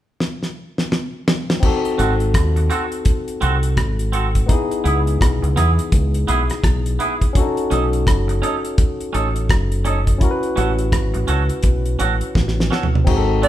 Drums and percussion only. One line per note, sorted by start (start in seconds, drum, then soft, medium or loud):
0.20 snare medium
0.43 snare soft
0.78 snare medium
0.92 snare medium
1.28 snare medium
1.50 snare medium
1.63 kick loud
1.63 crash medium
1.85 closed hi-hat soft
1.99 closed hi-hat medium
2.20 closed hi-hat soft
2.34 kick loud
2.34 cross-stick loud
2.34 closed hi-hat medium
2.56 closed hi-hat soft
2.70 closed hi-hat medium
2.92 closed hi-hat medium
3.05 kick loud
3.05 closed hi-hat medium
3.28 closed hi-hat soft
3.42 closed hi-hat medium
3.63 closed hi-hat medium
3.77 kick loud
3.77 cross-stick loud
3.77 closed hi-hat medium
3.99 closed hi-hat medium
4.13 closed hi-hat medium
4.35 kick medium
4.35 closed hi-hat medium
4.49 kick loud
4.49 closed hi-hat medium
4.71 closed hi-hat soft
4.86 closed hi-hat medium
5.07 closed hi-hat soft
5.21 kick loud
5.21 cross-stick loud
5.21 closed hi-hat medium
5.44 closed hi-hat soft
5.57 cross-stick medium
5.57 closed hi-hat medium
5.79 closed hi-hat medium
5.92 kick loud
5.92 closed hi-hat medium
6.14 closed hi-hat soft
6.28 closed hi-hat medium
6.50 cross-stick medium
6.50 closed hi-hat medium
6.64 kick loud
6.64 cross-stick loud
6.64 closed hi-hat medium
6.86 closed hi-hat medium
7.00 closed hi-hat medium
7.21 kick medium
7.21 closed hi-hat medium
7.35 kick loud
7.35 closed hi-hat medium
7.57 closed hi-hat soft
7.71 closed hi-hat medium
7.93 closed hi-hat medium
8.07 kick loud
8.07 cross-stick loud
8.07 closed hi-hat medium
8.29 closed hi-hat soft
8.43 closed hi-hat medium
8.65 closed hi-hat medium
8.78 kick loud
8.78 closed hi-hat medium
9.01 closed hi-hat soft
9.14 closed hi-hat medium
9.36 closed hi-hat medium
9.49 kick loud
9.49 cross-stick loud
9.49 closed hi-hat medium
9.72 closed hi-hat medium
9.85 closed hi-hat medium
10.07 kick medium
10.07 closed hi-hat medium
10.21 kick loud
10.21 closed hi-hat medium
10.43 closed hi-hat soft
10.57 closed hi-hat medium
10.79 closed hi-hat soft
10.92 kick loud
10.92 cross-stick loud
10.92 closed hi-hat medium
11.14 closed hi-hat soft
11.28 closed hi-hat medium
11.49 closed hi-hat medium
11.63 kick loud
11.63 closed hi-hat medium
11.86 closed hi-hat medium
12.00 closed hi-hat medium
12.21 closed hi-hat soft
12.35 kick loud
12.35 snare medium
12.48 snare soft
12.60 snare medium
12.72 snare medium
12.83 floor tom medium
12.95 floor tom medium
13.07 kick loud
13.07 crash medium
13.43 closed hi-hat medium